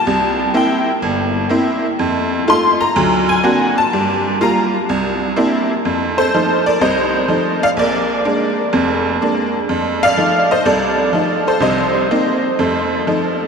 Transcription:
X:1
M:4/4
L:1/8
Q:"Swing" 1/4=125
K:Fmix
V:1 name="Honky-tonk piano"
a2 g z4 z | z2 c' b2 _a2 =a- | a2 b z4 z | z [Ac]2 [Bd] [ce]3 [df] |
[Bd]6- [Bd] z | z [df]2 [ce] [Ad]3 [Ac] | [ce]6- [ce] z |]
V:2 name="Honky-tonk piano"
C,,2 [B,C=E] z G,,,2 [B,CE] z | F,,2 [A,EF] z [D,,^F,]2 [^A,CD^F] z | G,,2 [G,B,F] z C,,2 [B,CD=E] z | F,,2 [F,A,E] z C,,2 [F,A,E] z |
B,,,2 [_A,B,D] z [F,,,F,,]2 [A,B,D] z | F,,2 [F,A,E] z C,,2 [F,A,E] z | [C,,C,]2 [B,CE] z [F,,A,]2 [F,A,E] z |]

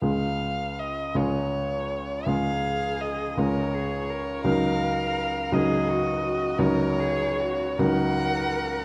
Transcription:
X:1
M:12/8
L:1/8
Q:3/8=54
K:Db
V:1 name="Violin"
f2 e d3 f2 e d3 | f3 e3 d3 g3 |]
V:2 name="Cello"
z6 A3 B A B- | B3 A G G B A G B3 |]
V:3 name="Grand piano"
[D,,A,FA]3 [D,,A,FA]3 [D,,A,FA]3 [D,,A,FA]3 | [D,,G,EB]3 [D,,G,EB]3 [D,,G,EB]3 [D,,G,EB]3 |]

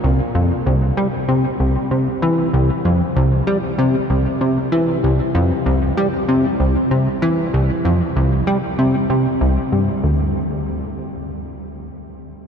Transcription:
X:1
M:4/4
L:1/8
Q:1/4=96
K:Cmix
V:1 name="Analog synth bass" clef=bass
C,, F,, C,, G, C, C,, C, E, | C,, F,, C,, G, C, C,, C, E, | C,, F,, C,, G, C, C,, C, E, | C,, F,, C,, G, C, C, C,, G,, |
D,, z6 z |]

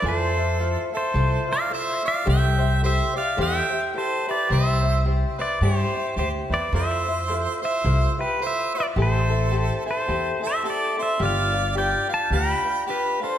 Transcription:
X:1
M:4/4
L:1/8
Q:"Swing" 1/4=107
K:Am
V:1 name="Pedal steel guitar"
c3 c2 f e f | g2 e f g2 c d | e2 z d c2 c d | e3 e2 B e d |
c3 c2 e d e | f2 g a b2 B c |]
V:2 name="Harmonica"
A3 A2 d c d | e2 c d e2 A B | c2 z B G2 G B | c3 c2 G c B |
A3 A2 c A c | d2 d f g2 G A |]
V:3 name="Ukulele"
[EFAc] [EFc] [EFAc] [EFc] [EFAc] [EFc] [EFAc] [EFc] | [EGAc] [EGc] [EGAc] [EGc] [EGAc] [EGc] [EGAc] [EGc] | [CEGc] [CEc] [CEGc] [CEc] [CEGc] [CEc] [CEGc] [CEc] | [EFAc] [EFc] [EFAc] [EFc] [EFAc] [EFc] [EFAc] [EFc] |
[CEGA] [CEA] [CEGA] [CEA] [CEGA] [CEA] [CEGA] [CEA] | [DFGB] [DFB] [DFGB] [DFB] [DFGB] [DFB] [DFGB] [DFB] |]
V:4 name="Upright bass" clef=bass
F,,4 C,, z3 | C,,4 E,, z3 | C,,4 G,, z D,, E,, | F,,4 C,, z3 |
A,,,4 E,, z3 | G,,,4 D,, z3 |]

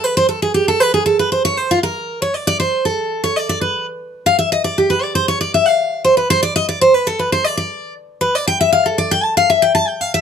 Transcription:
X:1
M:4/4
L:1/8
Q:1/4=235
K:Ddor
V:1 name="Steel-string acoustic guitar"
B c A _A G =A B _A | A B c ^c =c F _B2- | _B ^c d d =c2 A2- | A ^c d d B2 z2 |
z f e _e d G B d | c ^c d e f3 =c | B c d _e d c B A | B c d d3 z2 |
B d g e f A d g | a f e g a g f e |]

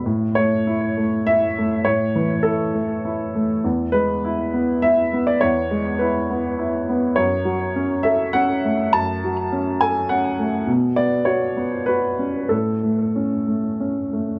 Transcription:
X:1
M:3/4
L:1/16
Q:1/4=101
K:A
V:1 name="Upright piano"
z2 c6 e4 | c4 A6 z2 | z2 B6 e3 d | c4 B6 z2 |
c6 e2 f4 | a6 g2 f4 | z2 d2 c4 B4 | A8 z4 |]
V:2 name="Upright piano"
A,,2 A,2 E2 A,2 E2 A,2 | A,,2 E,2 E2 A,2 E2 A,2 | E,,2 G,2 E2 B,2 E2 B,2 | E,,2 G,2 E2 B,2 E2 B,2 |
F,,2 F,2 C2 A2 C2 A,2 | F,,2 F,2 C2 A2 C2 A,2 | B,,2 B,2 F2 B,2 F2 C2 | A,,2 A,2 C2 A,2 C2 A,2 |]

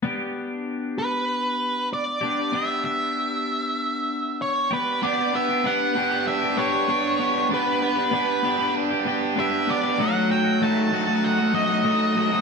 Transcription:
X:1
M:4/4
L:1/16
Q:1/4=97
K:Edor
V:1 name="Lead electric guitar"
z6 B6 d4 | e2 e8- e2 c2 B2 | d2 e2 f4 e2 c6 | B8 z4 e2 d2 |
f2 g2 a4 f2 ^d6 |]
V:2 name="Clean electric guitar"
[B,DG]12- [B,DG]2 [B,DG]2 | [B,DG]12- [B,DG]2 [B,DG]2 | [B,DG] [DG]2 [DG] [B,DG]2 [B,DG] [DG]2 [DG] [B,DG] [DG] [B,DG]2 [B,DG] [DG] | [B,DG] [DG]2 [DG] [B,DG]2 [B,DG] [DG]2 [DG] [B,DG] [DG] [B,DG]2 [B,DG] [DG] |
[F,A,^DF] [A,DF]2 [A,DF] [F,A,DF]2 [F,A,DF] [A,DF]2 [A,DF] [F,A,DF] [A,DF] [F,A,DF]2 [F,A,DF] [A,DF] |]
V:3 name="Overdriven electric guitar"
z16 | z16 | B,2 B,2 B,2 G2 D2 G2 D2 B,2 | B,2 B,2 B,2 G2 D2 G2 D2 B,2 |
F,2 F,2 A,2 F2 ^D2 F2 D2 A,2 |]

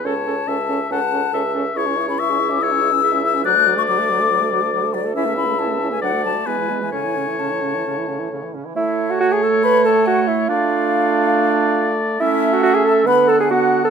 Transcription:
X:1
M:4/4
L:1/16
Q:1/4=139
K:Alyd
V:1 name="Flute"
a8 a6 z2 | [K:A] c'3 b c'3 d' e'6 e'2 | f'3 c' d'8- d'2 d2 | e2 b2 a3 g f2 a2 g3 g |
g4 a8 z4 | e3 f f g a2 b2 a2 f2 e2 | =f12- f2 z2 | e3 f f g a2 b2 a g f3 a |]
V:2 name="Oboe"
c4 e4 f4 e4 | [K:A] c4 e4 c4 e4 | d12- d2 z2 | e8 d4 B4 |
c12- c2 z2 | c16 | d16 | e8 f4 f4 |]
V:3 name="Bassoon"
C,,4 C,,4 C,,4 C,,4 | [K:A] C,,16 | D,,16 | C,,8 D,,4 E,,4 |
A,,12- A,,2 z2 | E3 F F G A2 B2 A2 F2 E2 | =F12- F2 z2 | E3 F F G A2 B2 A G F3 A |]
V:4 name="Clarinet"
A2 A2 A2 A2 A2 A2 A2 A2 | [K:A] G E G E G E G E G E G E G E G E | F A F A F A F A F A F A F A F A | E C E C E C E C D F D F B, G, B, G, |
C E C E C E C E C E C E C E C E | A,16 | D16 | C8 B,4 B,4 |]
V:5 name="French horn"
C2 C2 C2 C2 C2 C2 C2 C2 | [K:A] E C E C E C E C E C E C E C E C | F, A, F, A, F, A, F, A, F, A, F, A, F, A, F, A, | C A, C A, C A, C A, F, A, F, A, G, E, G, E, |
C, E, C, E, C, E, C, E, C, E, C, E, C, E, C, E, | A,16 | A,16 | A,8 D,8 |]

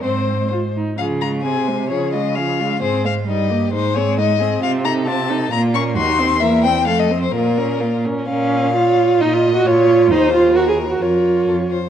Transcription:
X:1
M:2/4
L:1/16
Q:1/4=131
K:Abmix
V:1 name="Violin"
c4 z4 | f2 b2 a4 | d2 e2 f4 | c2 f2 e4 |
c2 d2 e4 | [K:Bbm] f2 b2 =a4 | b2 d'2 c'4 | =e2 =g2 f _e2 c |
B6 z2 | B4 d4 | e4 d4 | c4 B4 |
B4 =A2 c2 |]
V:2 name="Violin"
c6 z2 | A2 F2 A2 c2 | A2 F2 A2 F2 | A2 c2 E2 =G2 |
E2 A2 E2 A2 | [K:Bbm] F2 =A2 F2 A2 | F2 B2 G2 E2 | B2 c2 =A2 c2 |
F2 B2 F2 B2 | f8 | e4 d4 | c4 B4 |
d6 z2 |]
V:3 name="Viola"
C4 F2 E2 | F,2 A,2 C2 A,2 | F,2 A,2 F,2 A,2 | C2 A,2 =G,2 B,2 |
A,2 C2 A,2 C2 | [K:Bbm] C2 E2 C2 E2 | B,2 D2 E2 C2 | B,2 C2 =A,2 C2 |
B,2 D2 B,2 D2 | D4 F4 | E F2 G F4 | E2 F2 G A2 G |
F6 z2 |]
V:4 name="Cello" clef=bass
A,,6 z2 | D,4 C,4 | D,8 | A,,4 =G,,4 |
A,,8 | [K:Bbm] C,8 | B,,4 E,,4 | =E,,4 F,,4 |
B,,6 z2 | B,,8 | B,,4 B,,4 | E,,8 |
F,,4 F,,2 z2 |]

